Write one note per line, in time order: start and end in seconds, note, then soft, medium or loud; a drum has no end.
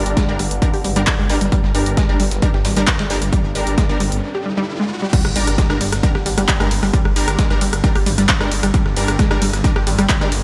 0.00 4.23 G2 medium
0.00 4.23 D3 medium
0.00 0.26 G3 medium
0.00 0.26 D4 medium
0.00 0.26 A#4 medium
0.06 0.14 G1 medium
0.06 closed hi-hat medium
0.06 closed hi-hat soft
0.17 0.23 G#3 loud
0.17 kick loud
0.17 snare loud
0.17 closed hi-hat medium
0.17 closed hi-hat loud
0.28 0.37 G1 medium
0.28 0.38 G3 medium
0.28 0.38 D4 medium
0.28 0.38 A#4 medium
0.39 0.49 G1 loud
0.39 0.43 G3 medium
0.39 closed hi-hat medium
0.39 open hi-hat loud
0.51 0.60 G1 medium
0.51 closed hi-hat medium
0.62 0.68 G3 medium
0.62 0.68 D4 medium
0.62 0.68 A#4 medium
0.62 kick loud
0.62 closed hi-hat medium
0.74 0.82 G1 medium
0.74 0.79 G4 medium
0.74 open hi-hat medium
0.84 0.94 G#1 loud
0.84 0.91 G3 medium
0.84 closed hi-hat medium
0.84 open hi-hat loud
0.96 1.05 G1 medium
0.96 1.02 G3 loud
0.96 1.02 G3 medium
0.96 1.02 D4 medium
0.96 1.02 A#4 medium
0.96 snare soft
0.96 closed hi-hat medium
1.07 kick loud
1.07 snare loud
1.07 clap loud
1.07 closed hi-hat medium
1.19 1.27 G1 medium
1.19 1.27 G#3 medium
1.30 1.39 G1 loud
1.30 1.36 G3 loud
1.30 1.36 D4 medium
1.30 1.36 A#4 loud
1.30 snare soft
1.30 closed hi-hat medium
1.30 open hi-hat loud
1.41 1.50 G1 medium
1.41 1.45 G3 medium
1.41 closed hi-hat medium
1.52 1.58 G3 loud
1.52 kick loud
1.52 closed hi-hat medium
1.52 riser medium
1.64 1.72 G1 medium
1.64 snare soft
1.75 1.84 G1 loud
1.75 2.06 G3 medium
1.75 2.06 D4 medium
1.75 2.06 A#4 medium
1.75 closed hi-hat medium
1.75 open hi-hat loud
1.86 1.95 G1 medium
1.86 closed hi-hat medium
1.86 closed hi-hat soft
1.97 2.03 G#3 loud
1.97 kick loud
1.97 snare loud
1.97 closed hi-hat medium
2.09 2.17 G1 medium
2.09 2.18 G3 medium
2.09 2.18 D4 medium
2.09 2.18 A#4 medium
2.20 2.29 G1 loud
2.20 2.24 G3 medium
2.20 snare soft
2.20 closed hi-hat medium
2.20 open hi-hat loud
2.31 2.40 G1 medium
2.31 snare medium
2.31 closed hi-hat medium
2.42 2.49 G3 medium
2.42 2.49 D4 medium
2.42 2.49 A#4 medium
2.42 kick loud
2.42 closed hi-hat medium
2.54 2.63 G1 medium
2.54 2.60 G4 medium
2.54 snare soft
2.65 2.74 G#1 loud
2.65 2.71 G3 medium
2.65 snare loud
2.65 closed hi-hat medium
2.65 open hi-hat loud
2.76 2.85 G1 medium
2.76 2.82 G3 medium
2.76 2.83 G3 loud
2.76 2.82 D4 medium
2.76 2.82 A#4 loud
2.76 closed hi-hat medium
2.87 kick loud
2.87 snare soft
2.87 clap loud
2.87 closed hi-hat medium
2.99 3.08 G1 medium
2.99 3.08 G#3 medium
2.99 snare loud
2.99 closed hi-hat medium
3.10 3.19 G1 loud
3.10 3.16 G3 loud
3.10 3.16 D4 medium
3.10 3.16 A#4 loud
3.10 open hi-hat loud
3.22 3.30 G1 medium
3.22 3.25 G3 medium
3.22 closed hi-hat medium
3.33 3.39 G3 loud
3.33 kick loud
3.33 closed hi-hat medium
3.44 3.53 G1 medium
3.55 3.64 G1 loud
3.55 3.87 G3 medium
3.55 3.87 D4 medium
3.55 3.87 A#4 medium
3.55 closed hi-hat medium
3.55 open hi-hat loud
3.67 3.75 G1 medium
3.67 closed hi-hat medium
3.67 closed hi-hat soft
3.78 3.84 G#3 loud
3.78 kick loud
3.78 snare loud
3.78 closed hi-hat loud
3.78 closed hi-hat medium
3.89 3.98 G1 loud
3.89 3.99 G3 medium
3.89 3.99 D4 medium
3.89 3.99 A#4 medium
4.00 4.09 G1 loud
4.00 4.04 G3 medium
4.00 closed hi-hat medium
4.00 open hi-hat loud
4.12 4.21 G1 medium
4.12 closed hi-hat medium
4.35 4.40 G4 medium
4.46 4.52 G3 medium
4.57 4.63 G3 loud
4.80 4.88 G#3 medium
5.02 5.06 G3 medium
5.13 10.44 G2 medium
5.13 10.44 D3 medium
5.13 5.19 G3 loud
5.13 kick loud
5.13 closed hi-hat medium
5.13 crash loud
5.13 impact medium
5.25 5.33 G1 medium
5.25 cross-stick medium
5.25 snare soft
5.36 5.45 G1 loud
5.36 5.67 G3 medium
5.36 5.67 D4 medium
5.36 5.67 A#4 medium
5.36 closed hi-hat medium
5.36 open hi-hat loud
5.36 ride medium
5.47 5.56 G1 medium
5.47 cross-stick medium
5.47 closed hi-hat soft
5.47 closed hi-hat medium
5.58 5.64 G#3 loud
5.58 kick loud
5.58 snare loud
5.58 closed hi-hat medium
5.58 closed hi-hat loud
5.70 5.78 G1 loud
5.70 5.79 G3 medium
5.70 5.79 D4 medium
5.70 5.79 A#4 medium
5.70 cross-stick medium
5.81 5.90 G1 loud
5.81 5.84 G3 medium
5.81 snare soft
5.81 closed hi-hat medium
5.81 open hi-hat loud
5.81 ride medium
5.92 6.01 G1 medium
5.92 cross-stick medium
5.92 snare medium
5.92 closed hi-hat medium
6.03 6.10 G3 medium
6.03 6.10 D4 medium
6.03 6.10 A#4 medium
6.03 kick loud
6.03 closed hi-hat medium
6.15 6.24 G1 medium
6.15 6.21 G4 medium
6.15 cross-stick medium
6.15 snare medium
6.26 6.35 G#1 loud
6.26 6.32 G3 medium
6.26 closed hi-hat medium
6.26 open hi-hat loud
6.26 ride medium
6.38 6.46 G1 medium
6.38 6.43 G3 loud
6.38 cross-stick medium
6.38 closed hi-hat medium
6.48 kick loud
6.48 snare loud
6.48 clap loud
6.48 closed hi-hat medium
6.60 6.69 G1 medium
6.60 6.69 G3 medium
6.60 6.69 G#3 medium
6.60 6.69 D4 medium
6.60 6.69 A#4 medium
6.60 cross-stick medium
6.71 6.80 G1 loud
6.71 closed hi-hat medium
6.71 open hi-hat loud
6.71 ride medium
6.83 6.91 G1 loud
6.83 6.86 G3 medium
6.83 cross-stick medium
6.83 open hi-hat medium
6.94 7.00 G3 loud
6.94 kick loud
6.94 closed hi-hat medium
7.05 7.14 G1 medium
7.05 cross-stick medium
7.16 7.25 G1 loud
7.16 7.48 G3 medium
7.16 7.48 D4 medium
7.16 7.48 A#4 medium
7.16 closed hi-hat medium
7.16 open hi-hat loud
7.16 ride medium
7.28 7.36 G1 loud
7.28 cross-stick loud
7.28 closed hi-hat medium
7.28 closed hi-hat soft
7.39 7.45 G#3 loud
7.39 kick loud
7.39 snare loud
7.39 closed hi-hat medium
7.39 closed hi-hat loud
7.50 7.59 G1 medium
7.50 7.60 G3 medium
7.50 7.60 D4 medium
7.50 7.60 A#4 medium
7.50 cross-stick medium
7.61 7.70 G1 loud
7.61 7.65 G3 medium
7.61 closed hi-hat medium
7.61 open hi-hat loud
7.61 ride medium
7.73 7.81 G1 medium
7.73 cross-stick medium
7.73 closed hi-hat medium
7.84 7.90 G3 medium
7.84 7.90 D4 medium
7.84 7.90 A#4 medium
7.84 kick loud
7.84 closed hi-hat medium
7.95 8.04 G1 medium
7.95 8.01 G4 medium
7.95 cross-stick medium
7.95 open hi-hat medium
8.06 8.16 G#1 loud
8.06 8.13 G3 medium
8.06 closed hi-hat medium
8.06 open hi-hat loud
8.06 ride medium
8.18 8.27 G1 medium
8.18 8.24 G3 loud
8.18 cross-stick medium
8.18 snare soft
8.18 closed hi-hat medium
8.29 kick loud
8.29 snare loud
8.29 clap loud
8.29 closed hi-hat medium
8.40 8.49 G1 medium
8.40 8.50 G3 medium
8.40 8.49 G#3 medium
8.40 8.50 D4 medium
8.40 8.50 A#4 loud
8.40 cross-stick medium
8.52 8.61 G1 loud
8.52 snare soft
8.52 closed hi-hat medium
8.52 open hi-hat loud
8.52 ride medium
8.63 8.72 G1 medium
8.63 8.67 G3 medium
8.63 cross-stick medium
8.63 closed hi-hat medium
8.74 8.80 G3 loud
8.74 kick loud
8.74 closed hi-hat medium
8.86 8.94 G1 medium
8.86 cross-stick medium
8.86 snare soft
8.97 9.06 G1 loud
8.97 9.28 G3 medium
8.97 9.28 D4 medium
8.97 9.28 A#4 medium
8.97 closed hi-hat medium
8.97 open hi-hat loud
8.97 ride medium
9.08 9.17 G1 medium
9.08 cross-stick loud
9.08 closed hi-hat medium
9.08 closed hi-hat soft
9.19 9.25 G#3 loud
9.19 kick loud
9.19 snare loud
9.19 closed hi-hat medium
9.31 9.39 G1 medium
9.31 9.40 G3 medium
9.31 9.40 D4 medium
9.31 9.40 A#4 medium
9.31 cross-stick loud
9.42 9.51 G1 loud
9.42 9.45 G3 medium
9.42 closed hi-hat medium
9.42 open hi-hat loud
9.42 ride medium
9.53 9.62 G1 medium
9.53 cross-stick medium
9.53 snare medium
9.53 closed hi-hat medium
9.64 9.71 G3 medium
9.64 9.71 D4 medium
9.64 9.71 A#4 medium
9.64 kick loud
9.64 closed hi-hat medium
9.76 9.84 G1 medium
9.76 9.82 G4 medium
9.76 cross-stick medium
9.76 snare medium
9.87 9.96 G#1 loud
9.87 9.93 G3 medium
9.87 closed hi-hat medium
9.87 open hi-hat loud
9.87 ride medium
9.98 10.07 G1 medium
9.98 10.04 G3 loud
9.98 cross-stick loud
9.98 closed hi-hat medium
10.09 kick loud
10.09 snare loud
10.09 clap loud
10.09 closed hi-hat medium
10.21 10.29 G1 medium
10.21 10.30 G3 medium
10.21 10.30 G#3 medium
10.21 10.30 D4 medium
10.21 10.30 A#4 medium
10.21 cross-stick medium
10.32 10.41 G1 loud
10.32 closed hi-hat medium
10.32 open hi-hat loud
10.32 ride medium